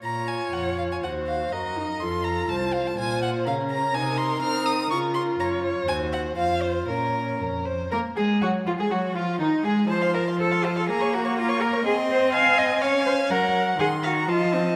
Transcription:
<<
  \new Staff \with { instrumentName = "Violin" } { \time 2/4 \key bes \minor \tempo 4 = 123 bes''8 aes''8 ges''8 f''16 aes''16 | ges''8 f''8 ees''4 | c'''8 bes''8 a''8 f''16 a''16 | aes''8 ges''8 f''8 bes''8 |
aes''8 c'''8 f'''8 ees'''8 | des'''8 c'''8 bes''8 r8 | aes''8 ges''8 f''8 c''8 | bes'4 r4 |
bes'8 aes'8 ges'8 f'16 aes'16 | ges'8 f'8 ees'8 aes'8 | a''16 c'''16 a''16 c'''16 a''16 c'''16 a''16 c'''16 | bes''16 des'''16 bes''16 des'''16 bes''16 des'''16 bes''16 des'''16 |
c'''4 aes''4 | aes''4 bes''4 | c'''8 bes''8 a''4 | }
  \new Staff \with { instrumentName = "Violin" } { \time 2/4 \key bes \minor des''2 | c''4 bes'4 | a'4 c''4 | c''4 bes'4~ |
bes'2~ | bes'4 des''8 des''8 | c''4 c''4 | bes'4 bes'8 c''8 |
bes'8 aes'8 ges'8 f'16 aes'16 | ges'8 f'8 ees'8 aes'8 | c''16 f''16 c''16 f''16 c''16 f''16 c''16 f''16 | bes'16 des''16 bes'16 des''16 bes'16 des''16 bes'16 des''16 |
ees''4 aes''4 | f''4 ges''4 | ges''8 f''8 ees''4 | }
  \new Staff \with { instrumentName = "Cello" } { \time 2/4 \key bes \minor bes,4 f,4 | ees,4 ges,4 | f,4 c,4 | bes,4 des4 |
c4 c'4 | des4 ges,4 | ees,4 f,4 | bes,4 f,4 |
bes'8 aes'8 ges'8 f'16 aes'16 | ges'8 f'8 ees'8 aes'8 | c''8 bes'8 a'8 f'16 a'16 | aes'8 ges'8 f'8 bes'8 |
aes'8 c''8 f''8 ees''8 | des''8 c''8 bes'8 r8 | aes'8 ges'8 f'8 c'8 | }
  \new Staff \with { instrumentName = "Viola" } { \time 2/4 \key bes \minor f'2 | ges'4 ges'8 ees'8 | f'2 | f'4 des'4 |
ees'4 ees'4 | f'2 | ges'4 f'4 | des'4. r8 |
bes8 aes8 ges8 f16 aes16 | ges8 f8 ees8 aes8 | f2 | bes2 |
c'2 | des'4 ges4 | ees4 f4 | }
>>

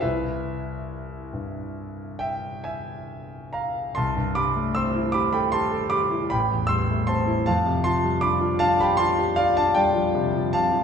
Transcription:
<<
  \new Staff \with { instrumentName = "Grand piano" } { \time 9/8 \key c \major \tempo 4. = 51 <e' b' e''>2~ <e' b' e''>8 <e'' g''>8 <e'' aes''>4 <f'' bes''>8 | <a'' c'''>8 <b'' d'''>8 <c''' e'''>8 <b'' d'''>16 <g'' b''>16 <a'' c'''>8 <b'' d'''>8 <g'' b''>8 <c''' e'''>8 <a'' c'''>8 | <f'' a''>8 <a'' c'''>8 <b'' d'''>8 <f'' a''>16 <g'' b''>16 <a'' c'''>8 <d'' f''>16 <f'' a''>16 <d'' g''>4 <f'' a''>8 | }
  \new Staff \with { instrumentName = "Grand piano" } { \time 9/8 \key c \major c,4. g,2. | c,16 g,16 g16 a16 c'16 e'16 g'16 a'16 g'16 a'16 g'16 e'16 a,,16 e,16 g16 a16 c'16 e'16 | f,16 c16 f16 g16 d'16 f'16 d'16 g'16 f'16 g'16 f'16 d'16 g16 f16 c16 f16 c16 f16 | }
>>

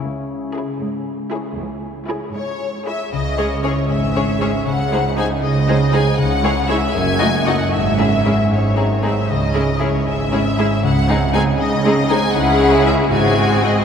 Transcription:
<<
  \new Staff \with { instrumentName = "Violin section" } { \time 6/8 \key cis \minor \tempo 4. = 78 r4 cis''8 r4 cis''8 | r4 cis''8 cis''4 <cis'' e''>8 | dis''4 cis''8 e''4. | fis''4 gis''8 dis''4 gis''8 |
fis''4 e''8 gis''4 fis''8 | e''4. cis''4 e''8 | dis''4 cis''8 e''4. | fis''4 gis''8 dis''4 gis''8 |
fis''4 e''8 gis''4 dis''8 | }
  \new Staff \with { instrumentName = "Violin section" } { \time 6/8 \key cis \minor r4 gis'8 r4 gis'8 | r4 gis'8 r4 gis'8 | r8 <gis' cis''>8 <gis' cis''>8 r8 <gis' cis''>8 <gis' cis''>8 | r8 <gis' bis'>8 <gis' bis'>8 r8 <gis' bis'>8 <gis' bis'>8 |
r8 <gis' cis''>8 <gis' cis''>8 r8 <fis' dis''>8 <fis' dis''>8 | r8 <e' gis'>8 <e' gis'>8 r8 <dis' gis'>8 <dis' gis'>8 | r8 <e' gis'>8 <e' gis'>8 r8 <e' gis'>8 <e' gis'>8 | r8 <dis' gis'>8 <dis' gis'>8 r8 <dis' gis'>8 <dis' gis'>8 |
<e' gis'>4. <fis' gis'>4. | }
  \new Staff \with { instrumentName = "Harp" } { \time 6/8 \key cis \minor << { r2. | r2. | cis8 cis'8 e'8 gis'8 cis'8 gis'8 | cis8 bis8 dis'8 gis'8 bis8 gis'8 |
cis8 cis'8 <e' gis'>8 fis,8 dis'8 <dis' a'>8 | gis,8 cis'8 <e' gis'>8 gis,8 bis8 <dis' gis'>8 | cis8 cis'8 e'8 gis'8 cis'8 gis'8 | cis8 bis8 dis'8 gis'8 bis8 gis'8 |
cis8 cis'8 <e' gis'>8 gis,8 bis8 <fis' gis'>8 | } \\ { <cis cis' e' gis'>2.~ | <cis cis' e' gis'>2.~ | <cis cis' e' gis'>2. | r2. |
r2. | r2. | r2. | r2. |
r2. | } >> }
  \new Staff \with { instrumentName = "Viola section" } { \time 6/8 \key cis \minor r4 e'8 r4 e'8 | r4 e'8 r4 e'8 | r8 <gis cis'>8 <gis cis'>8 r8 <gis cis'>8 <gis cis'>8 | r8 <gis dis'>8 <gis dis'>8 r8 <gis dis'>8 <gis dis'>8 |
r8 <gis e'>8 <gis e'>8 r8 <a dis'>8 <a dis'>8 | r8 <gis cis'>8 <gis cis'>8 r8 <gis bis>8 <gis bis>8 | r8 <gis cis'>8 <gis cis'>8 r8 <gis cis'>8 <gis cis'>8 | r8 <gis bis>8 <gis bis>8 r8 <gis bis>8 <gis bis>8 |
<gis cis'>4. <gis bis>4. | }
  \new Staff \with { instrumentName = "Cello section" } { \clef bass \time 6/8 \key cis \minor cis,4. gis,4. | cis,4. gis,4. | cis4. gis,4. | cis4. cis4. |
cis4. fis,4. | gis,4. gis,4. | cis4. gis,4. | cis4. cis4. |
cis4. gis,4. | }
  \new Staff \with { instrumentName = "Double bass section" } { \clef bass \time 6/8 \key cis \minor r2. | r2. | cis,4. gis,,4. | cis,4. cis,4. |
cis,4. fis,,4. | gis,,4. gis,,4. | cis,4. gis,,4. | cis,4. cis,4. |
cis,4. gis,,4. | }
>>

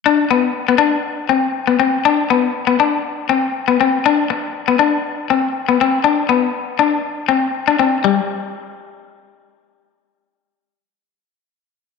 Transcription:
\new Staff \with { instrumentName = "Clean electric guitar" } { \time 4/4 \key b \phrygian \tempo 4 = 120 d'8 b8 r16 b16 d'8 r8 c'8 r16 b16 c'8 | d'8 b8 r16 b16 d'8 r8 c'8 r16 b16 c'8 | d'8 r8. b16 d'8 r8 c'8 r16 b16 c'8 | d'8 b8 r8 d'8 r8 c'8 r16 d'16 c'8 |
g8 r2. r8 | r1 | }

